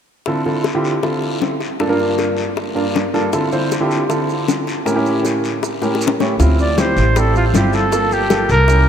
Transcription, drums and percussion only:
0.26 high bongo, long guiro
0.45 high bongo
0.64 high bongo, short guiro
0.84 short guiro
1.03 high bongo, long guiro
1.22 high bongo
1.41 high bongo, low bongo, short guiro
1.60 high bongo, short guiro
1.79 high bongo, long guiro
2.00 high bongo
2.18 high bongo, short guiro
2.37 short guiro
2.56 high bongo, long guiro
2.77 high bongo
2.95 high bongo, low bongo, short guiro
3.14 high bongo, short guiro
3.33 high bongo, long guiro, maracas
3.52 high bongo, maracas
3.71 high bongo, short guiro, maracas
3.91 short guiro, maracas
4.10 high bongo, long guiro, maracas
4.29 high bongo, maracas
4.48 high bongo, low bongo, short guiro, maracas
4.67 high bongo, short guiro, maracas
4.86 high bongo, long guiro, maracas
5.06 high bongo, maracas
5.25 high bongo, short guiro, maracas
5.44 short guiro, maracas
5.63 high bongo, long guiro, maracas
5.82 high bongo, maracas
5.95 high bongo
6.01 short guiro, maracas
6.07 low bongo
6.20 low bongo, short guiro, maracas
6.40 high bongo, high conga, long guiro, maracas
6.59 high bongo, high conga, maracas
6.78 high bongo, high conga, short guiro, maracas
6.97 high conga, short guiro, maracas
7.16 high bongo, high conga, long guiro, maracas
7.35 high bongo, high conga, maracas
7.54 high bongo, low bongo, high conga, short guiro, maracas
7.73 high bongo, high conga, short guiro, maracas
7.92 high bongo, high conga, long guiro, maracas
8.11 high bongo, high conga, maracas
8.30 high bongo, high conga, short guiro, maracas
8.49 high conga, short guiro, maracas
8.68 high bongo, high conga, long guiro, maracas

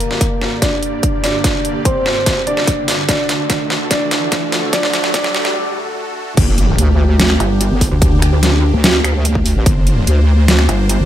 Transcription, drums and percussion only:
0.00 closed hi-hat
0.11 snare
0.21 kick, closed hi-hat
0.42 snare
0.62 kick, snare, closed hi-hat
0.83 closed hi-hat
1.03 kick, closed hi-hat
1.24 snare, open hi-hat
1.44 kick, snare, closed hi-hat
1.65 closed hi-hat
1.85 kick, closed hi-hat
2.06 snare
2.26 kick, snare, closed hi-hat
2.47 closed hi-hat
2.57 snare
2.67 kick, closed hi-hat
2.88 snare, open hi-hat
3.09 kick, snare, closed hi-hat
3.29 snare, closed hi-hat
3.50 kick, snare, closed hi-hat
3.70 snare
3.91 kick, snare, closed hi-hat
4.11 snare, closed hi-hat
4.32 kick, snare, closed hi-hat
4.52 snare, open hi-hat
4.73 kick, snare, closed hi-hat
4.83 snare
4.94 snare, closed hi-hat
5.04 snare
5.14 kick, snare, closed hi-hat
5.24 snare
5.35 snare
5.45 snare
6.37 kick, closed hi-hat, crash
6.58 closed hi-hat
6.78 closed hi-hat
7.20 finger snap, snare, closed hi-hat
7.30 finger snap
7.40 closed hi-hat
7.61 closed hi-hat
7.81 kick, open hi-hat
8.02 kick, closed hi-hat
8.22 finger snap, closed hi-hat
8.43 snare, closed hi-hat
8.84 snare, closed hi-hat
9.04 finger snap, closed hi-hat
9.25 closed hi-hat
9.35 kick
9.46 open hi-hat
9.66 kick, closed hi-hat
9.87 closed hi-hat
10.07 closed hi-hat
10.48 finger snap, snare, closed hi-hat
10.59 finger snap
10.69 closed hi-hat
10.89 closed hi-hat

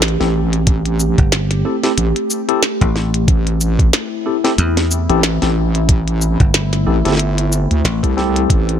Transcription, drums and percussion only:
0.02 snare, closed hi-hat
0.08 closed hi-hat
0.21 snare
0.53 closed hi-hat
0.67 kick, closed hi-hat
0.86 closed hi-hat
1.00 shaker
1.18 kick, closed hi-hat
1.32 snare, closed hi-hat
1.51 snare, closed hi-hat
1.83 snare, closed hi-hat
1.98 closed hi-hat
2.16 closed hi-hat
2.30 shaker
2.49 closed hi-hat
2.63 snare, closed hi-hat
2.81 kick, closed hi-hat
2.96 snare
3.14 closed hi-hat
3.28 kick, closed hi-hat
3.47 closed hi-hat
3.61 shaker
3.79 kick, closed hi-hat
3.93 snare, closed hi-hat
4.45 snare, closed hi-hat
4.58 closed hi-hat
4.77 snare, closed hi-hat
4.91 shaker
5.10 closed hi-hat
5.23 snare, closed hi-hat
5.42 snare, closed hi-hat
5.75 closed hi-hat
5.89 kick, closed hi-hat
6.08 closed hi-hat
6.22 shaker
6.40 kick, closed hi-hat
6.54 snare, closed hi-hat
6.73 snare, closed hi-hat
7.05 snare, closed hi-hat
7.08 snare
7.12 snare
7.15 snare
7.17 snare, closed hi-hat
7.38 closed hi-hat
7.52 shaker
7.71 closed hi-hat
7.85 snare, closed hi-hat
8.03 kick, closed hi-hat
8.18 snare
8.36 closed hi-hat
8.50 kick, closed hi-hat
8.69 closed hi-hat

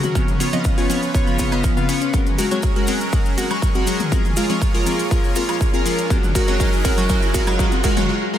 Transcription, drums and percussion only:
0.03 closed hi-hat, mid tom, maracas
0.15 kick, closed hi-hat, high conga, maracas
0.28 closed hi-hat, mid tom, maracas
0.40 open hi-hat, maracas
0.53 closed hi-hat, high conga, maracas
0.64 kick, closed hi-hat, maracas
0.78 open hi-hat, maracas
0.90 open hi-hat, high conga, maracas
1.03 closed hi-hat, maracas
1.14 kick, closed hi-hat, maracas
1.27 closed hi-hat, maracas
1.39 kick, open hi-hat, high conga, maracas
1.52 closed hi-hat, high woodblock, maracas
1.64 kick, closed hi-hat, maracas
1.77 closed hi-hat, high conga, maracas
1.89 open hi-hat, maracas
2.01 closed hi-hat, maracas
2.14 kick, closed hi-hat, high conga, maracas
2.26 closed hi-hat, mid tom, maracas
2.38 open hi-hat, maracas
2.51 closed hi-hat, high conga, maracas
2.63 kick, closed hi-hat, maracas
2.76 closed hi-hat, maracas
2.87 open hi-hat, high conga, maracas
3.01 closed hi-hat, maracas
3.13 kick, closed hi-hat, maracas
3.26 closed hi-hat, maracas
3.38 open hi-hat, high conga, maracas
3.50 closed hi-hat, high woodblock, maracas
3.62 kick, closed hi-hat, maracas
3.75 closed hi-hat, high conga, maracas
3.87 open hi-hat, maracas
4.00 closed hi-hat, mid tom, maracas
4.12 kick, closed hi-hat, high conga, maracas
4.25 closed hi-hat, mid tom, maracas
4.37 open hi-hat, maracas
4.50 closed hi-hat, high conga, maracas
4.62 kick, closed hi-hat, maracas
4.75 open hi-hat, maracas
4.86 open hi-hat, high conga, maracas
4.99 closed hi-hat, maracas
5.11 kick, closed hi-hat, maracas
5.24 closed hi-hat, maracas
5.36 open hi-hat, high conga, maracas
5.49 closed hi-hat, high woodblock, maracas
5.61 kick, closed hi-hat, maracas
5.74 closed hi-hat, high conga, maracas
5.86 open hi-hat, maracas
5.98 closed hi-hat, maracas
6.10 kick, closed hi-hat, high conga, maracas
6.23 closed hi-hat, mid tom, maracas
6.35 kick, open hi-hat, maracas
6.48 closed hi-hat, high conga, maracas
6.60 kick, closed hi-hat, maracas
6.73 closed hi-hat, maracas
6.85 kick, open hi-hat, high conga, maracas
6.98 closed hi-hat, maracas
7.09 kick, closed hi-hat, maracas
7.22 closed hi-hat, maracas
7.34 kick, open hi-hat, high conga, maracas
7.47 closed hi-hat, high woodblock, maracas
7.59 kick, closed hi-hat, maracas
7.72 closed hi-hat, high conga, maracas
7.84 kick, open hi-hat, maracas
7.97 closed hi-hat, mid tom, maracas

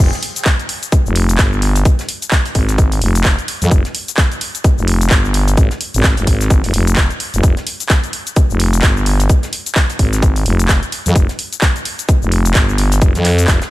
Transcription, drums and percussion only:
0.13 snare, closed hi-hat, shaker
0.23 open hi-hat, shaker
0.36 closed hi-hat, shaker
0.45 kick, snare, clap, closed hi-hat, shaker
0.59 closed hi-hat, shaker
0.69 open hi-hat, shaker
0.83 closed hi-hat, shaker
0.92 kick, closed hi-hat, shaker
1.06 shaker
1.16 open hi-hat, shaker
1.29 closed hi-hat, shaker
1.38 kick, snare, clap, closed hi-hat, shaker
1.53 shaker
1.62 snare, open hi-hat, shaker
1.75 closed hi-hat, shaker
1.85 kick, closed hi-hat, shaker
1.99 snare, closed hi-hat, shaker
2.08 open hi-hat, shaker
2.22 closed hi-hat, shaker
2.31 kick, snare, clap, closed hi-hat, shaker
2.46 closed hi-hat, shaker
2.54 kick, open hi-hat, shaker
2.68 snare, closed hi-hat, shaker
2.78 kick, closed hi-hat, shaker
2.92 open hi-hat, shaker
3.02 open hi-hat, shaker
3.15 closed hi-hat, shaker
3.24 kick, snare, clap, closed hi-hat, shaker
3.39 closed hi-hat, shaker
3.48 open hi-hat
3.62 closed hi-hat, shaker
3.71 kick, closed hi-hat, shaker
3.85 snare, closed hi-hat, shaker
3.94 open hi-hat, shaker
4.08 closed hi-hat, shaker
4.17 kick, snare, clap, closed hi-hat, shaker
4.32 closed hi-hat, shaker
4.41 open hi-hat
4.55 closed hi-hat, shaker
4.64 kick, closed hi-hat, shaker
4.78 shaker
4.88 open hi-hat
5.01 closed hi-hat, shaker
5.10 kick, snare, clap, closed hi-hat, shaker
5.25 shaker
5.33 snare, open hi-hat, shaker
5.48 closed hi-hat, shaker
5.57 kick, closed hi-hat, shaker
5.70 snare, closed hi-hat, shaker
5.81 open hi-hat
5.94 closed hi-hat, shaker
6.03 kick, snare, clap, closed hi-hat, shaker
6.17 closed hi-hat, shaker
6.27 kick, open hi-hat
6.41 snare, closed hi-hat, shaker
6.50 kick, closed hi-hat, shaker
6.63 snare, open hi-hat, shaker
6.74 open hi-hat
6.87 closed hi-hat, shaker
6.96 kick, snare, clap, closed hi-hat, shaker
7.11 closed hi-hat, shaker
7.20 open hi-hat
7.34 closed hi-hat, shaker
7.43 kick, closed hi-hat, shaker
7.57 snare, closed hi-hat, shaker
7.67 open hi-hat
7.80 closed hi-hat, shaker
7.89 kick, snare, clap, closed hi-hat, shaker
8.04 closed hi-hat, shaker
8.13 open hi-hat, shaker
8.27 closed hi-hat, shaker
8.36 kick, closed hi-hat, shaker
8.50 shaker
8.60 open hi-hat
8.73 closed hi-hat, shaker
8.82 kick, snare, clap, closed hi-hat, shaker
8.97 shaker
9.05 snare, open hi-hat, shaker
9.20 closed hi-hat, shaker
9.29 kick, closed hi-hat, shaker
9.43 snare, closed hi-hat, shaker
9.53 open hi-hat, shaker
9.66 closed hi-hat, shaker
9.75 kick, snare, clap, closed hi-hat, shaker
9.90 closed hi-hat, shaker
9.99 kick, open hi-hat
10.13 snare, closed hi-hat, shaker
10.22 kick, closed hi-hat, shaker
10.36 open hi-hat, shaker
10.46 open hi-hat, shaker
10.59 closed hi-hat, shaker
10.69 kick, snare, clap, closed hi-hat, shaker
10.83 closed hi-hat, shaker
10.92 open hi-hat
11.06 closed hi-hat, shaker
11.16 kick, closed hi-hat, shaker
11.29 snare, closed hi-hat, shaker
11.39 open hi-hat
11.53 closed hi-hat, shaker
11.62 kick, snare, clap, closed hi-hat, shaker
11.76 closed hi-hat, shaker
11.85 open hi-hat, shaker
11.99 closed hi-hat, shaker
12.08 kick, closed hi-hat, shaker
12.22 shaker
12.32 open hi-hat, shaker
12.45 closed hi-hat, shaker
12.55 kick, snare, clap, closed hi-hat, shaker
12.69 shaker
12.78 snare, open hi-hat
12.92 closed hi-hat, shaker
13.01 kick, closed hi-hat, shaker
13.15 snare, closed hi-hat, shaker
13.24 snare, clap, open hi-hat, shaker
13.38 closed hi-hat, shaker
13.48 kick, clap, closed hi-hat, shaker
13.61 snare, closed hi-hat, shaker

